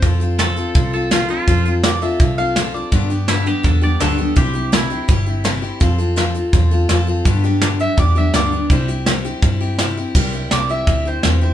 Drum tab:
CC |--------|--------|--------|--------|
HH |xxxxx-x-|xxxxx-x-|xxxxx-x-|xxxxx-x-|
SD |--o---o-|--o---o-|--o---o-|--o---o-|
BD |o---o---|o---o---|o---o---|o---o---|

CC |--------|--------|--------|x-------|
HH |xxxxx-x-|xxxxx-x-|xxxxx-x-|-xxxx-x-|
SD |--o---o-|--o---o-|--o---o-|--o---o-|
BD |o---o---|o---o---|o---o---|o---o---|